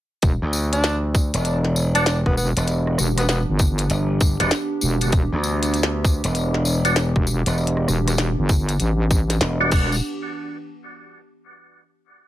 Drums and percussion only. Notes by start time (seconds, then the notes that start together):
0.22 kick, closed hi-hat, tambourine
0.53 tambourine
0.73 closed hi-hat, tambourine
0.84 snare, closed hi-hat, tambourine
1.15 kick, tambourine
1.34 closed hi-hat, tambourine
1.45 closed hi-hat, tambourine
1.65 snare
1.76 tambourine
1.95 closed hi-hat, tambourine
2.06 snare, closed hi-hat, tambourine
2.26 kick, cross-stick
2.37 tambourine
2.57 closed hi-hat, tambourine
2.67 closed hi-hat, tambourine
2.87 cross-stick
2.98 cross-stick, tambourine
3.18 cross-stick, closed hi-hat, tambourine
3.29 snare, closed hi-hat, tambourine
3.59 kick, tambourine
3.78 closed hi-hat, tambourine
3.90 closed hi-hat, tambourine
4.21 kick, tambourine
4.40 snare, closed hi-hat, tambourine
4.51 snare, closed hi-hat, tambourine
4.81 tambourine
5.01 closed hi-hat, tambourine
5.12 kick, closed hi-hat, tambourine
5.44 tambourine
5.63 closed hi-hat, tambourine
5.74 closed hi-hat, tambourine
5.83 snare
6.05 kick, tambourine
6.24 closed hi-hat, tambourine
6.35 closed hi-hat, tambourine
6.54 snare
6.65 tambourine
6.85 closed hi-hat, tambourine
6.96 snare, closed hi-hat, tambourine
7.16 kick, cross-stick
7.27 tambourine
7.46 closed hi-hat, tambourine
7.58 tambourine
7.67 closed hi-hat
7.77 cross-stick
7.88 cross-stick, tambourine
8.08 cross-stick, closed hi-hat, tambourine
8.18 snare, closed hi-hat, tambourine
8.49 kick, tambourine
8.69 closed hi-hat, tambourine
8.80 closed hi-hat, tambourine
9.11 kick, tambourine
9.30 snare, closed hi-hat, tambourine
9.41 snare, closed hi-hat, tambourine
9.71 kick, crash, tambourine
9.92 tambourine